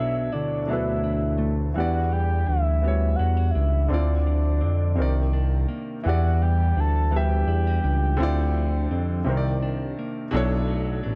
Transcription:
Already playing: B1 B2 F#3 D4 E4 A4 C#5 E5
0.32 D2 E4 D5
0.67 B2 F#3 A3 D4 E4 E5
0.72 A4 B4
1.04 D4
1.39 A3
1.74 E2 E3 B3 E4 F#5
1.78 G4 D5
2.12 G3 G5
2.46 D2 D4 E5
2.82 E3 G3 B3 F#4
2.86 G3 C#5
3.16 E4 F#5
3.20 E2
3.37 F#4
3.47 F#5
3.51 E5
3.55 C#2 D4
3.88 D2 D3 C4 E4 D5
3.93 F4 D5
4.27 F3
4.61 F2 C4
4.95 C2 C3 D#3 C4
5.00 A#4 D5
5.33 D4
5.68 A#3
6.03 E2 E3 B3 E4 F#5
6.08 G4 D5
6.42 G3 G5
6.77 D2 D4 A5
7.11 E3 G3 B3 E4
7.15 G3 E5 G5
7.48 E2 E4
7.67 F#4
7.84 C#2 D4
8.17 D2 D3 C4 E4
8.22 F4 D5
8.55 F3
8.91 F2 C4
9.24 C2 C3 D#3 C4
9.29 A#4 C5
9.37 D5
9.62 D4
9.99 A#3
10.31 B1 B2 F#3 D4 E4
10.35 A4 C#5
10.68 A3
11.03 A1 D4

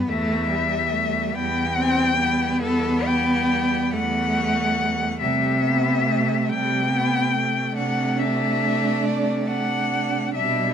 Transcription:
Already playing: B3
0.08 E2 A3 E5
0.50 G3
0.92 A3
1.34 E2 B3 G5
1.75 G3 C4
2.19 B3
2.62 E2 A4
3.05 G3 G5
3.93 E2 A3 F#5
4.36 G3
5.20 C3 G3 A3 E5
5.64 A3 B3
6.07 A3
6.49 C3 G3 G5
6.89 A3 B3
7.34 A3
7.75 C3 D4 F#5
8.18 D4 E5
9.04 C3 D5
9.47 D4 F#5
10.34 B2 G3 D4 E5

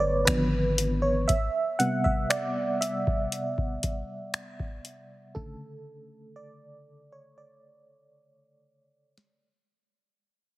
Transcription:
Already playing: G1 B4 C#5
0.00 D5
0.25 G#1 D3 F3 B3 B4, finger snap, closed hi-hat
0.78 closed hi-hat
1.02 C#5
1.28 E5, kick, closed hi-hat
1.79 C3 G3 B3 F#5, closed hi-hat
2.04 E5, kick
2.30 D5, finger snap, closed hi-hat
2.81 E5, closed hi-hat
3.07 kick
3.32 closed hi-hat
3.58 kick
3.83 kick, closed hi-hat
4.34 finger snap, closed hi-hat
4.60 kick
4.85 closed hi-hat
5.35 C#3 D3 A3 A4, kick
6.36 D5
7.12 C#5
7.38 D5
9.18 snare

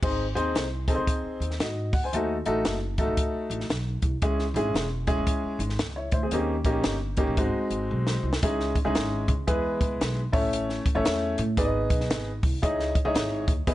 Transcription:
0.03 G#1 C4 D#4 G#4 C5, kick, crash
0.35 D#2 C4 D#4 G#4 C5, closed hi-hat
0.54 C2, snare, closed hi-hat
0.88 C4 D#4 G#4 A4, kick, closed hi-hat
0.95 C#2 C5
1.07 kick, closed hi-hat
1.24 muted upright bass stroke
1.40 D#2, closed hi-hat
1.51 snare
1.60 G#2 F#4 D#5, snare, closed hi-hat
1.93 D#2 F#5, kick, open hi-hat
2.04 C5 G#5
2.13 D#2 A3 D#4 F#4 A4, closed hi-hat
2.46 A1 A3 D#4 F#4 A4, closed hi-hat
2.65 F#1, snare, closed hi-hat
2.98 A3 D#4 F#4 A4, kick, closed hi-hat
3.08 G#1
3.17 kick, closed hi-hat
3.34 muted upright bass stroke
3.50 A1, closed hi-hat
3.60 snare
3.69 B1, snare, closed hi-hat
4.02 C2, kick, closed hi-hat
4.22 C#2 G#3 C#4 E4 G#4, kick, closed hi-hat
4.39 snare
4.54 G#1 G#3 C#4 E4 G#4, closed hi-hat
4.74 E1, snare, closed hi-hat
5.07 G#3 C#4 E4 G#4, kick, closed hi-hat
5.17 F#1
5.27 kick, closed hi-hat
5.44 muted upright bass stroke
5.59 G#1, closed hi-hat
5.69 snare
5.79 C#2, snare, closed hi-hat
5.96 E4 C#5
6.11 D2 E4 C5, kick, closed hi-hat
6.23 C4 G#4
6.31 D#2 A#3 C#4 D#4 G4, closed hi-hat
6.64 A#1 A#3 C#4 D#4 G4, kick, closed hi-hat
6.84 G1, snare, closed hi-hat
7.17 A#3 C#4 D#4 G4, kick, closed hi-hat
7.27 A#1
7.37 G#1 G#3 C4 D#4 F#4, kick, closed hi-hat
7.54 muted upright bass stroke
7.70 G#1, closed hi-hat
7.91 B1
8.07 snare
8.23 C2
8.33 snare
8.43 C#2 G#3 C#4 D#4 E4 G#4, kick, closed hi-hat
8.60 snare
8.76 kick, closed hi-hat
8.85 C#2 G#3 C#4 D#4 E4 G#4
8.95 G#1, snare, closed hi-hat
9.28 C#3, kick, closed hi-hat
9.47 E2 G#3 B3 E4 G#4 B4, kick, closed hi-hat
9.81 C#2, kick, closed hi-hat
10.00 B1, snare, closed hi-hat
10.32 A1 A3 C#4 E4 A4 C#5, kick, open hi-hat
10.53 closed hi-hat
10.69 snare
10.86 kick, closed hi-hat
10.95 A1 A3 C#4 E4 A4 C#5
11.05 E2, snare, closed hi-hat
11.38 A2, closed hi-hat
11.57 G#1 B3 D#4 G#4 B4 D5, kick, closed hi-hat
11.65 D#5
11.90 B1, kick, closed hi-hat
12.01 snare
12.10 G#1, snare, closed hi-hat
12.43 C2, kick, open hi-hat
12.62 C#2 D#4 E4 G#4 C#5 D#5, kick, closed hi-hat
12.80 snare
12.95 kick, closed hi-hat
13.05 C#2 D#4 E4 G#4 C#5 D#5
13.14 G#1, snare, closed hi-hat
13.48 D#2, kick, closed hi-hat
13.67 E2 B3 E4 G#4 B4 D#5, kick, closed hi-hat

